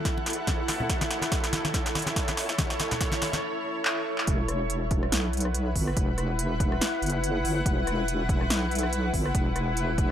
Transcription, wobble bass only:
0.26 F#1
0.69 G1
0.89 E1
1.74 B1
2.37 G1
2.58 E1
4.28 E1
5.12 B1
5.75 G1
5.97 E1
7.02 F#1
7.44 G1
7.66 E1
8.50 B1
9.14 G1
9.35 E1

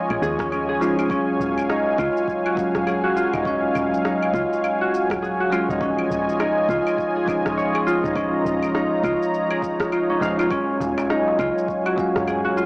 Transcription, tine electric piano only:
Already playing: F3 G#3 C#4 D#4
0.80 F3 G#3 C#4 D#4
1.08 F#3 G#3 C#4
1.12 F4
2.55 F#3 G#3 C#4
2.59 F5
3.43 F#3 G#3 C#4
3.47 F5
5.50 F#3 G#3 C#4 F4
5.78 F3 G#3 C#4 D#4
7.25 F3 G#3 C#4
7.29 D#4
8.13 F3 G#3 C#4 D#4
10.20 F3 G#3 C#4 D#4
10.49 F#3 G#3 C#4 F4
11.96 F#3 G#3 C#4 F5

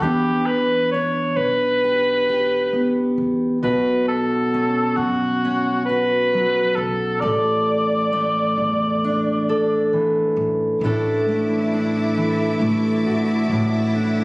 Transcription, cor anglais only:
0.02 G4
0.46 B4
0.92 C#5
1.36 B4
3.64 B4
4.08 A4
4.96 F#4
5.86 B4
6.75 A4
7.20 D5

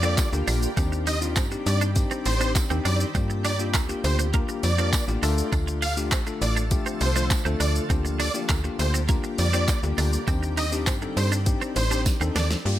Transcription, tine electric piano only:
0.03 A#3 D4 F4 A4
0.32 A#3 D4 F4 G4
0.77 C4 D4 D#4 G4
1.21 C4 D4 D#4 F4
1.51 C4 D4 D#4 G4
1.96 C4 D4 D#4 G4
2.40 C4 D4 D#4 G4
2.70 C4 D4 D#4 G4
3.15 A#3 D4 F4 G4
3.59 A#3 D4 F4 G4
3.89 A#3 D4 F4 G4
4.34 A#3 D4 F4 G4
4.78 A#3 D4 F4 A#4
5.08 A#3 D4 F4 G4
5.23 A3 D4 F4 A4
5.97 A3 D4 F4 G4
6.27 A3 D4 F4 A4
6.71 A3 D4 F4 G4
7.16 A3 D4 F4 C5
7.45 A3 D4 F4 A4
7.90 A#3 D4 F4 G4
8.34 A#3 D4 F4 G4
8.64 A#3 D4 F4 G4
9.09 A#3 D4 F4 G4
9.53 A#3 D4 F4 G4
9.83 A#3 D4 F4 G4
10.27 C4 D4 D#4 G4
10.72 C4 D4 D#4 G4
11.02 C4 D4 D#4 A4
11.46 C4 D4 D#4 G4
11.91 C4 D4 D#4 G4
12.21 C4 D4 D#4 A4
12.65 A#3 F4 G4

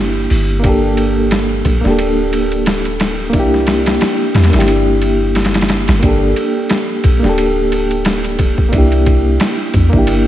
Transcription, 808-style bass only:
Already playing: G1
0.30 G1
1.65 A#1
1.85 D1
3.34 C2
4.34 E2
4.54 G1
5.88 G1
6.03 G1
7.04 A#1
7.23 D1
8.73 C2
9.74 E2
9.93 G1

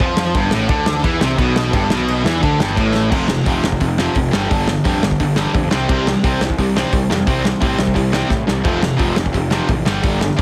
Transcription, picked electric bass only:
0.00 F2
0.35 G1
0.52 A1
0.69 D2
1.04 E2
1.21 C2
1.38 B1
1.73 G1
1.90 B1
2.25 E2
2.43 D2
2.60 G1
2.78 A1
3.12 F1
3.46 F1
3.64 F1
3.81 F1
4.15 F1
4.33 G1
4.51 G1
4.85 F2
5.02 G1
5.20 G1
5.54 F2
5.72 C2
5.89 C2
6.24 C2
6.40 C2
6.58 C2
6.93 C2
7.10 F2
7.27 C2
7.61 A2
7.79 C2
7.96 C2
8.30 A2
8.47 C2
8.65 F1
9.00 F1
9.17 F1
9.34 F1
9.69 A1
9.87 G1
10.04 G1
10.39 F2

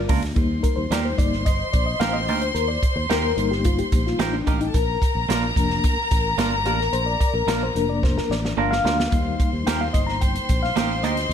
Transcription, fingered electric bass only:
0.09 C#2
0.22 D2
0.36 D#2
0.77 D#2
0.90 D#2
1.19 G1
1.74 A#1
2.00 A1
2.28 D2
2.55 D#2
2.96 D#2
3.10 D#2
3.37 G1
3.92 A#1
4.19 A1
4.47 A1
4.74 A#1
5.15 A#1
5.29 A#1
5.56 F1
5.97 muted fingered electric bass stroke
6.12 A1
6.38 G1
6.66 A1
6.93 A#1
7.34 A#1
7.47 A#1
7.75 F1
8.30 A1
8.57 G1
8.85 D2
9.12 D#2
9.53 D#2
9.67 D#2
9.94 G1
10.49 A#1
10.77 A1
11.04 D2
11.29 D#2

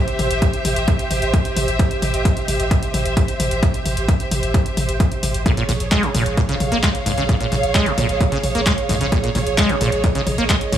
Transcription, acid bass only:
5.46 A#2
5.57 A#2
5.69 A#2
5.91 G#3
6.03 C3
6.14 A#2
6.37 A#2
6.49 C#3
6.72 A#3
6.83 G#3
7.06 G#2
7.18 C#3
7.29 A#2
7.40 A#2
7.52 A#2
7.75 G#3
7.86 C3
7.98 A#2
8.20 A#2
8.32 C#3
8.55 A#3
8.66 G#3
8.89 G#2
9.01 C#3
9.12 A#2
9.24 A#2
9.35 A#2
9.58 G#3
9.70 C3
9.81 A#2
10.04 A#2
10.15 C#3
10.38 A#3
10.50 G#3
10.73 G#2

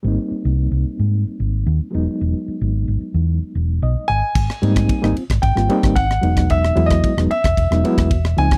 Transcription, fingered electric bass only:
0.04 G#1
0.31 muted fingered electric bass stroke
0.45 C2
0.71 C2
0.86 muted fingered electric bass stroke
0.99 G#2
1.27 muted fingered electric bass stroke
1.40 G#1
1.67 D#2
1.80 muted fingered electric bass stroke
1.94 E1
2.21 E1
2.48 muted fingered electric bass stroke
2.61 G#1
2.88 G#1
3.01 muted fingered electric bass stroke
3.14 E2
3.42 muted fingered electric bass stroke
3.55 E1
3.82 B1
3.96 muted fingered electric bass stroke
4.09 G#1
4.35 G#1
4.63 G#2
4.89 muted fingered electric bass stroke
5.03 G#1
5.17 muted fingered electric bass stroke
5.30 G#1
5.43 G#1
5.56 G#1
5.84 G#1
6.23 E1
6.76 E2
7.17 E1
7.31 muted fingered electric bass stroke
7.45 E1
7.58 E1
7.70 E1
7.98 E1
8.37 C#2

